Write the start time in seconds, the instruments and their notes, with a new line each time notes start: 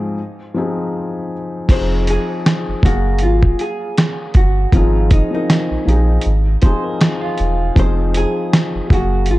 Already playing: felt piano G#2 F3 C4 D#4 G#4
0.54 felt piano F3 C4 D#4 G#4
1.69 sub bass F1, felt piano F3 C4 D#4 G#4, hollow-body jazz guitar C5, kick, closed hi-hat, crash
2.07 hollow-body jazz guitar G#4, closed hi-hat
2.46 snare, closed hi-hat
2.68 sub bass F#1
2.82 sub bass F#1, felt piano F#3 A#3 G#4 F5, hollow-body jazz guitar F#4, kick, snare, closed hi-hat
3.19 sub bass G#1, closed hi-hat
3.23 hollow-body jazz guitar F4
3.43 kick
3.59 hollow-body jazz guitar G#4, closed hi-hat
3.98 snare, closed hi-hat
4.34 sub bass G1, hollow-body jazz guitar F#4, kick, closed hi-hat
4.72 sub bass G#1, felt piano F3 C4 D#4, hollow-body jazz guitar F4, kick, closed hi-hat
4.76 felt piano G#4
5.11 hollow-body jazz guitar D#4, kick, closed hi-hat
5.31 felt piano F3 C4 D#4 A#4, hollow-body jazz guitar D#4
5.50 snare, closed hi-hat
5.71 sub bass A#1
5.86 sub bass A#1, felt piano F3 C4 D#4 G#4, closed hi-hat
6.21 closed hi-hat
6.26 sub bass G#1
6.62 felt piano F3 C4 D#4 G#4, clean electric guitar C5, kick, closed hi-hat
6.84 clean electric guitar A#4
7.00 clean electric guitar G#4, snare, closed hi-hat
7.21 clean electric guitar F4
7.38 sub bass E1, closed hi-hat
7.75 sub bass F1, felt piano F3 C4 D#4 G#4, kick, closed hi-hat
7.79 hollow-body jazz guitar C5
8.14 hollow-body jazz guitar G#4, closed hi-hat
8.53 snare, closed hi-hat
8.75 sub bass F#1
8.88 sub bass F#1, felt piano F#3 A#3 G#4 F5, kick
8.92 hollow-body jazz guitar F#4, snare, closed hi-hat
9.26 sub bass G#1, closed hi-hat
9.31 hollow-body jazz guitar F4